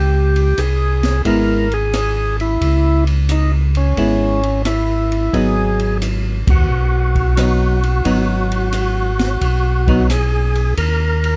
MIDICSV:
0, 0, Header, 1, 5, 480
1, 0, Start_track
1, 0, Key_signature, 5, "minor"
1, 0, Tempo, 680581
1, 1844, Time_signature, 4, 2, 24, 8
1, 8016, End_track
2, 0, Start_track
2, 0, Title_t, "Tonewheel organ"
2, 0, Program_c, 0, 16
2, 0, Note_on_c, 0, 67, 88
2, 414, Note_on_c, 0, 68, 92
2, 425, Note_off_c, 0, 67, 0
2, 861, Note_off_c, 0, 68, 0
2, 897, Note_on_c, 0, 70, 92
2, 1225, Note_off_c, 0, 70, 0
2, 1225, Note_on_c, 0, 68, 96
2, 1669, Note_off_c, 0, 68, 0
2, 1699, Note_on_c, 0, 64, 88
2, 2146, Note_off_c, 0, 64, 0
2, 2338, Note_on_c, 0, 63, 75
2, 2481, Note_off_c, 0, 63, 0
2, 2659, Note_on_c, 0, 61, 73
2, 3260, Note_off_c, 0, 61, 0
2, 3290, Note_on_c, 0, 64, 83
2, 3762, Note_on_c, 0, 68, 88
2, 3781, Note_off_c, 0, 64, 0
2, 4214, Note_off_c, 0, 68, 0
2, 4585, Note_on_c, 0, 66, 84
2, 7102, Note_off_c, 0, 66, 0
2, 7128, Note_on_c, 0, 68, 75
2, 7577, Note_off_c, 0, 68, 0
2, 7602, Note_on_c, 0, 70, 85
2, 8016, Note_off_c, 0, 70, 0
2, 8016, End_track
3, 0, Start_track
3, 0, Title_t, "Hollow-body jazz guitar"
3, 0, Program_c, 1, 26
3, 881, Note_on_c, 1, 56, 53
3, 886, Note_on_c, 1, 59, 62
3, 889, Note_on_c, 1, 64, 56
3, 1175, Note_off_c, 1, 56, 0
3, 1178, Note_off_c, 1, 59, 0
3, 1179, Note_off_c, 1, 64, 0
3, 2805, Note_on_c, 1, 56, 49
3, 2806, Note_on_c, 1, 59, 51
3, 2811, Note_on_c, 1, 64, 54
3, 3097, Note_off_c, 1, 56, 0
3, 3097, Note_off_c, 1, 59, 0
3, 3100, Note_off_c, 1, 64, 0
3, 3760, Note_on_c, 1, 54, 54
3, 3767, Note_on_c, 1, 59, 56
3, 3769, Note_on_c, 1, 63, 64
3, 4502, Note_off_c, 1, 54, 0
3, 4505, Note_off_c, 1, 59, 0
3, 4506, Note_off_c, 1, 63, 0
3, 5195, Note_on_c, 1, 54, 52
3, 5205, Note_on_c, 1, 59, 51
3, 5207, Note_on_c, 1, 63, 55
3, 5491, Note_off_c, 1, 54, 0
3, 5496, Note_off_c, 1, 59, 0
3, 5497, Note_off_c, 1, 63, 0
3, 5676, Note_on_c, 1, 54, 60
3, 5681, Note_on_c, 1, 59, 56
3, 5682, Note_on_c, 1, 63, 57
3, 6419, Note_off_c, 1, 54, 0
3, 6422, Note_off_c, 1, 59, 0
3, 6422, Note_off_c, 1, 63, 0
3, 6964, Note_on_c, 1, 54, 56
3, 6973, Note_on_c, 1, 59, 66
3, 6975, Note_on_c, 1, 63, 62
3, 7105, Note_off_c, 1, 54, 0
3, 7109, Note_off_c, 1, 59, 0
3, 7110, Note_off_c, 1, 63, 0
3, 8016, End_track
4, 0, Start_track
4, 0, Title_t, "Tonewheel organ"
4, 0, Program_c, 2, 16
4, 0, Note_on_c, 2, 37, 83
4, 379, Note_off_c, 2, 37, 0
4, 408, Note_on_c, 2, 36, 68
4, 857, Note_off_c, 2, 36, 0
4, 884, Note_on_c, 2, 32, 74
4, 1815, Note_off_c, 2, 32, 0
4, 1842, Note_on_c, 2, 37, 83
4, 2774, Note_off_c, 2, 37, 0
4, 2801, Note_on_c, 2, 32, 80
4, 3734, Note_off_c, 2, 32, 0
4, 3761, Note_on_c, 2, 32, 78
4, 4539, Note_off_c, 2, 32, 0
4, 4566, Note_on_c, 2, 39, 68
4, 4711, Note_off_c, 2, 39, 0
4, 4718, Note_on_c, 2, 35, 83
4, 5652, Note_off_c, 2, 35, 0
4, 5679, Note_on_c, 2, 32, 79
4, 6612, Note_off_c, 2, 32, 0
4, 6637, Note_on_c, 2, 35, 75
4, 7571, Note_off_c, 2, 35, 0
4, 7600, Note_on_c, 2, 39, 75
4, 8016, Note_off_c, 2, 39, 0
4, 8016, End_track
5, 0, Start_track
5, 0, Title_t, "Drums"
5, 252, Note_on_c, 9, 51, 44
5, 323, Note_off_c, 9, 51, 0
5, 406, Note_on_c, 9, 44, 50
5, 406, Note_on_c, 9, 51, 60
5, 477, Note_off_c, 9, 44, 0
5, 477, Note_off_c, 9, 51, 0
5, 727, Note_on_c, 9, 51, 45
5, 729, Note_on_c, 9, 38, 33
5, 798, Note_off_c, 9, 51, 0
5, 799, Note_off_c, 9, 38, 0
5, 882, Note_on_c, 9, 51, 56
5, 884, Note_on_c, 9, 36, 28
5, 953, Note_off_c, 9, 51, 0
5, 954, Note_off_c, 9, 36, 0
5, 1210, Note_on_c, 9, 51, 39
5, 1280, Note_off_c, 9, 51, 0
5, 1364, Note_on_c, 9, 44, 54
5, 1364, Note_on_c, 9, 51, 58
5, 1366, Note_on_c, 9, 37, 57
5, 1435, Note_off_c, 9, 44, 0
5, 1435, Note_off_c, 9, 51, 0
5, 1436, Note_off_c, 9, 37, 0
5, 1691, Note_on_c, 9, 51, 39
5, 1762, Note_off_c, 9, 51, 0
5, 1842, Note_on_c, 9, 36, 31
5, 1844, Note_on_c, 9, 51, 55
5, 1913, Note_off_c, 9, 36, 0
5, 1915, Note_off_c, 9, 51, 0
5, 2166, Note_on_c, 9, 51, 45
5, 2236, Note_off_c, 9, 51, 0
5, 2319, Note_on_c, 9, 44, 55
5, 2319, Note_on_c, 9, 51, 58
5, 2389, Note_off_c, 9, 44, 0
5, 2389, Note_off_c, 9, 51, 0
5, 2643, Note_on_c, 9, 51, 44
5, 2714, Note_off_c, 9, 51, 0
5, 2801, Note_on_c, 9, 36, 33
5, 2801, Note_on_c, 9, 51, 52
5, 2871, Note_off_c, 9, 36, 0
5, 2872, Note_off_c, 9, 51, 0
5, 3127, Note_on_c, 9, 51, 40
5, 3198, Note_off_c, 9, 51, 0
5, 3280, Note_on_c, 9, 44, 58
5, 3280, Note_on_c, 9, 51, 62
5, 3282, Note_on_c, 9, 37, 56
5, 3351, Note_off_c, 9, 44, 0
5, 3351, Note_off_c, 9, 51, 0
5, 3352, Note_off_c, 9, 37, 0
5, 3609, Note_on_c, 9, 51, 39
5, 3680, Note_off_c, 9, 51, 0
5, 3762, Note_on_c, 9, 36, 32
5, 3765, Note_on_c, 9, 51, 48
5, 3833, Note_off_c, 9, 36, 0
5, 3835, Note_off_c, 9, 51, 0
5, 4087, Note_on_c, 9, 51, 42
5, 4158, Note_off_c, 9, 51, 0
5, 4243, Note_on_c, 9, 44, 48
5, 4243, Note_on_c, 9, 51, 59
5, 4314, Note_off_c, 9, 44, 0
5, 4314, Note_off_c, 9, 51, 0
5, 4566, Note_on_c, 9, 36, 84
5, 4566, Note_on_c, 9, 51, 66
5, 4636, Note_off_c, 9, 36, 0
5, 4637, Note_off_c, 9, 51, 0
5, 5046, Note_on_c, 9, 36, 47
5, 5047, Note_on_c, 9, 51, 38
5, 5116, Note_off_c, 9, 36, 0
5, 5118, Note_off_c, 9, 51, 0
5, 5199, Note_on_c, 9, 44, 51
5, 5199, Note_on_c, 9, 51, 62
5, 5201, Note_on_c, 9, 37, 59
5, 5270, Note_off_c, 9, 44, 0
5, 5270, Note_off_c, 9, 51, 0
5, 5271, Note_off_c, 9, 37, 0
5, 5526, Note_on_c, 9, 51, 40
5, 5596, Note_off_c, 9, 51, 0
5, 5678, Note_on_c, 9, 51, 60
5, 5680, Note_on_c, 9, 36, 31
5, 5748, Note_off_c, 9, 51, 0
5, 5750, Note_off_c, 9, 36, 0
5, 6006, Note_on_c, 9, 51, 43
5, 6077, Note_off_c, 9, 51, 0
5, 6154, Note_on_c, 9, 44, 54
5, 6154, Note_on_c, 9, 51, 57
5, 6224, Note_off_c, 9, 44, 0
5, 6224, Note_off_c, 9, 51, 0
5, 6484, Note_on_c, 9, 51, 45
5, 6485, Note_on_c, 9, 38, 35
5, 6554, Note_off_c, 9, 51, 0
5, 6556, Note_off_c, 9, 38, 0
5, 6639, Note_on_c, 9, 51, 55
5, 6640, Note_on_c, 9, 36, 29
5, 6710, Note_off_c, 9, 51, 0
5, 6711, Note_off_c, 9, 36, 0
5, 6966, Note_on_c, 9, 36, 54
5, 6966, Note_on_c, 9, 51, 43
5, 7036, Note_off_c, 9, 36, 0
5, 7037, Note_off_c, 9, 51, 0
5, 7121, Note_on_c, 9, 44, 55
5, 7121, Note_on_c, 9, 51, 59
5, 7122, Note_on_c, 9, 37, 54
5, 7191, Note_off_c, 9, 44, 0
5, 7191, Note_off_c, 9, 51, 0
5, 7193, Note_off_c, 9, 37, 0
5, 7444, Note_on_c, 9, 51, 43
5, 7514, Note_off_c, 9, 51, 0
5, 7598, Note_on_c, 9, 51, 56
5, 7599, Note_on_c, 9, 36, 30
5, 7669, Note_off_c, 9, 51, 0
5, 7670, Note_off_c, 9, 36, 0
5, 7926, Note_on_c, 9, 51, 42
5, 7996, Note_off_c, 9, 51, 0
5, 8016, End_track
0, 0, End_of_file